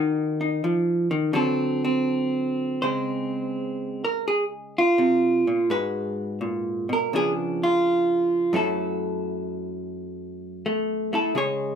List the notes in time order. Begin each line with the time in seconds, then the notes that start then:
Already playing: D#3 D#4 F#4
0.41 D#4
0.64 F3
1.11 D#3
1.33 D3 F#3 C4 A4
1.85 C4
2.82 C#3 G#3 C4 C5
4.04 A#4
4.28 G#4
4.78 F4
4.98 C3
5.47 A#2
5.70 G#2 G#3 F#4 B4
6.41 A#2
6.89 B2 A#4
7.13 C#3 F3 B3 D4 G#4
7.63 F4
8.53 F#2 F#3 A3 E4 A4
10.66 A3
11.13 A3 E4 A4
11.35 C#3 G#3 G#4 C#5